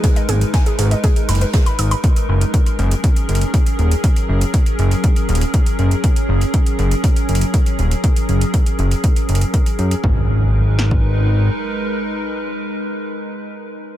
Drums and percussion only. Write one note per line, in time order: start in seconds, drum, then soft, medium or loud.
0.04 kick loud
0.04 closed hi-hat medium
0.16 closed hi-hat soft
0.29 closed hi-hat medium
0.29 mid tom medium
0.29 open hi-hat loud
0.41 closed hi-hat soft
0.54 kick loud
0.54 snare loud
0.54 closed hi-hat medium
0.66 closed hi-hat soft
0.79 closed hi-hat medium
0.79 open hi-hat loud
0.91 closed hi-hat soft
1.04 kick loud
1.04 closed hi-hat medium
1.16 closed hi-hat soft
1.28 snare soft
1.28 open hi-hat medium
1.28 open hi-hat loud
1.35 closed hi-hat soft
1.41 closed hi-hat soft
1.53 kick loud
1.53 snare loud
1.53 closed hi-hat medium
1.66 closed hi-hat soft
1.79 closed hi-hat medium
1.79 open hi-hat loud
1.91 closed hi-hat soft
1.91 open hi-hat medium
2.04 kick loud
2.04 closed hi-hat medium
2.16 closed hi-hat soft
2.41 closed hi-hat soft
2.54 kick loud
2.54 closed hi-hat medium
2.66 closed hi-hat soft
2.79 closed hi-hat soft
2.91 closed hi-hat soft
3.04 kick loud
3.04 closed hi-hat medium
3.16 closed hi-hat soft
3.29 closed hi-hat soft
3.35 closed hi-hat soft
3.41 closed hi-hat soft
3.54 kick loud
3.54 closed hi-hat medium
3.66 closed hi-hat soft
3.79 closed hi-hat soft
3.91 closed hi-hat soft
4.04 kick loud
4.04 closed hi-hat medium
4.16 closed hi-hat soft
4.41 closed hi-hat soft
4.54 kick loud
4.54 closed hi-hat medium
4.66 closed hi-hat soft
4.79 closed hi-hat soft
4.91 closed hi-hat soft
5.04 kick loud
5.04 closed hi-hat medium
5.16 closed hi-hat soft
5.29 closed hi-hat soft
5.35 closed hi-hat soft
5.41 closed hi-hat soft
5.54 kick loud
5.54 closed hi-hat medium
5.66 closed hi-hat soft
5.79 closed hi-hat soft
5.91 closed hi-hat soft
6.04 kick loud
6.04 closed hi-hat medium
6.16 closed hi-hat soft
6.41 closed hi-hat soft
6.54 kick loud
6.54 closed hi-hat medium
6.66 closed hi-hat soft
6.79 closed hi-hat soft
6.91 closed hi-hat soft
7.04 kick loud
7.04 closed hi-hat medium
7.16 closed hi-hat soft
7.29 closed hi-hat soft
7.35 closed hi-hat medium
7.41 closed hi-hat soft
7.54 kick loud
7.54 closed hi-hat medium
7.66 closed hi-hat soft
7.79 closed hi-hat soft
7.91 closed hi-hat soft
8.04 kick loud
8.04 closed hi-hat medium
8.16 closed hi-hat soft
8.29 closed hi-hat soft
8.41 closed hi-hat soft
8.54 kick loud
8.54 closed hi-hat medium
8.66 closed hi-hat soft
8.79 closed hi-hat soft
8.91 closed hi-hat soft
9.04 kick loud
9.04 closed hi-hat medium
9.16 closed hi-hat soft
9.29 closed hi-hat soft
9.35 closed hi-hat medium
9.41 closed hi-hat soft
9.54 kick loud
9.54 closed hi-hat medium
9.66 closed hi-hat soft
9.79 closed hi-hat soft
9.91 closed hi-hat soft
10.04 kick loud
10.79 snare medium
10.91 kick medium